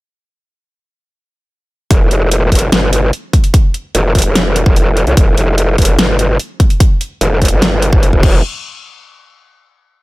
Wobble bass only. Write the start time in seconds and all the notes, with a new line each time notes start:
1.91 F1
2.11 F1
2.52 F1
2.72 G1
3.95 F1
4.25 F1
4.66 F1
5.07 C2
5.17 F1
5.37 F1
5.78 F1
5.99 G1
7.21 F1
7.52 G1
8.13 D#1
8.23 F1